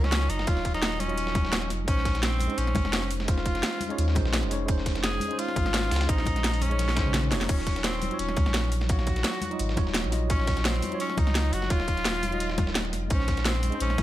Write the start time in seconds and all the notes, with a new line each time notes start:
Already playing: C#2 F#3 D#4 F4 C#5 D#5
0.04 C#4, snare
0.12 snare, closed hi-hat
0.30 F#1 D#4, closed hi-hat, open hi-hat
0.39 snare
0.44 D#1 F#3 D#4 F4, kick, closed hi-hat
0.50 C#5
0.57 snare
0.65 D#1, kick, closed hi-hat
0.74 D#4, snare, closed hi-hat
0.82 snare, closed hi-hat
1.00 C#4, closed hi-hat, open hi-hat, high conga
1.08 F#3 D#4 F4 D#5, closed hi-hat
1.18 closed hi-hat
1.27 snare
1.35 kick, closed hi-hat, high conga
1.45 snare
1.53 D#1, snare, closed hi-hat
1.62 snare
1.70 F1, snare, closed hi-hat, open hi-hat
1.85 A#1 G#3 C#4 D#4, kick, closed hi-hat
1.90 C5
1.97 snare
2.05 kick, snare, closed hi-hat, open hi-hat
2.15 snare, closed hi-hat
2.23 C4, snare, closed hi-hat
2.40 closed hi-hat, open hi-hat, high conga
2.47 G#3 C#4 D#4, closed hi-hat
2.53 C5
2.58 A#1 C#4, closed hi-hat
2.67 snare
2.75 G#1, kick, closed hi-hat, high conga
2.85 F1, snare
2.93 snare, closed hi-hat
3.11 closed hi-hat, open hi-hat
3.20 snare
3.26 G#3 C#4 D#4 F4, kick, closed hi-hat
3.31 C5
3.37 snare
3.46 kick, closed hi-hat
3.55 snare, closed hi-hat
3.63 snare, closed hi-hat
3.81 closed hi-hat, open hi-hat, high conga
3.89 G#3 C#4 D#4 C#5, closed hi-hat
3.98 D#2, closed hi-hat
4.08 snare
4.15 A#1 G#3 C#4 D#4 C5, kick, closed hi-hat, high conga
4.25 snare
4.33 snare, closed hi-hat
4.43 F1, snare
4.50 G#3 C#4 D#4 C#5, snare, closed hi-hat, open hi-hat
4.66 G#3 C#4 D#4, kick, closed hi-hat
4.71 C5
4.78 snare
4.86 kick, snare, closed hi-hat, open hi-hat
4.95 snare, closed hi-hat
5.04 G#4, snare, closed hi-hat
5.20 closed hi-hat, open hi-hat, high conga
5.28 G#3 C#4 D#4, closed hi-hat
5.33 C5
5.39 F4, closed hi-hat
5.48 snare
5.56 G#1, kick, closed hi-hat, high conga
5.66 snare
5.74 snare, closed hi-hat
5.91 C#2, snare, closed hi-hat, open hi-hat
5.96 snare, closed hi-hat
6.01 snare, closed hi-hat
6.06 A#1 G#3 C#4 D#4, kick, closed hi-hat
6.11 C5
6.18 snare
6.26 A#1, kick, closed hi-hat, high conga
6.36 snare, closed hi-hat
6.44 snare, closed hi-hat, open hi-hat
6.53 closed hi-hat
6.61 C#4, closed hi-hat, open hi-hat, high conga
6.70 G#3 C#4 D#4 C#5, closed hi-hat
6.79 snare, closed hi-hat, open hi-hat, high tom
6.88 snare
6.95 G#3 C#4 D#4 C5, kick, snare, closed hi-hat, high conga
7.06 mid tom
7.14 snare, closed hi-hat, mid tom
7.23 snare, mid tom
7.30 F1 G#3 C#4 D#4 C#5, snare, closed hi-hat, open hi-hat
7.41 D#4, snare, closed hi-hat
7.46 D#1 F#3 C#4 D#4 F4, kick, closed hi-hat, crash
7.52 C#5
7.59 snare
7.67 kick, snare, closed hi-hat, open hi-hat
7.76 snare, closed hi-hat
7.84 C4, snare, closed hi-hat
8.02 closed hi-hat, open hi-hat, high conga
8.09 F#3 D#4 F4, closed hi-hat
8.14 C#5
8.19 D#1 C#4, closed hi-hat
8.29 snare
8.37 C#2, kick, closed hi-hat, high conga
8.46 A#1, snare
8.54 snare, closed hi-hat
8.72 closed hi-hat, open hi-hat
8.81 snare
8.87 F#3 D#4 F#4 F5, kick, closed hi-hat
8.92 C#5
8.99 snare
9.07 kick, closed hi-hat
9.16 snare, closed hi-hat
9.24 snare, closed hi-hat
9.41 closed hi-hat, open hi-hat, high conga
9.50 F#3 D#4 F4 D#5, closed hi-hat
9.59 G#1, closed hi-hat
9.69 snare
9.76 D#1 F#3 D#4 F4 C#5, kick, closed hi-hat, high conga
9.87 snare
9.94 snare, closed hi-hat
10.04 A#1, snare
10.11 F#3 D#4 F4 D#5, snare, closed hi-hat, open hi-hat
10.27 F#3 C#4 D#4 F4, kick, closed hi-hat
10.32 C#5
10.40 snare
10.47 kick, snare, closed hi-hat, open hi-hat
10.57 snare, closed hi-hat
10.65 C4, snare, closed hi-hat
10.82 closed hi-hat, open hi-hat, high conga
10.89 F#3 D#4 F4, closed hi-hat
10.94 C#5
11.00 C#4, closed hi-hat
11.10 snare
11.17 C#2 D#4, kick, closed hi-hat, high conga
11.27 snare
11.35 snare, closed hi-hat
11.53 F#1 F#4, closed hi-hat, open hi-hat
11.62 snare
11.67 D#1 F#3 D#4 F4, kick, closed hi-hat
11.73 C#5
11.80 snare
11.88 D#1, kick, closed hi-hat
11.97 snare, closed hi-hat
12.05 snare, closed hi-hat
12.23 closed hi-hat, open hi-hat, high conga
12.31 F#3 D#4 F4 D#5, closed hi-hat
12.40 closed hi-hat
12.49 snare
12.58 kick, closed hi-hat, high conga
12.67 snare
12.75 D#1, snare, closed hi-hat
12.85 snare
12.93 F1, snare, closed hi-hat, open hi-hat
13.08 A#1 G#3 C#4 D#4, kick, closed hi-hat
13.13 C5
13.20 snare
13.28 kick, snare, closed hi-hat, open hi-hat
13.37 snare, closed hi-hat
13.45 C4, snare, closed hi-hat
13.63 closed hi-hat, open hi-hat, high conga
13.70 G#3 C#4 D#4, closed hi-hat
13.75 C5
13.80 A#1 C#4, closed hi-hat
13.90 snare
13.98 G#1, kick, closed hi-hat, high conga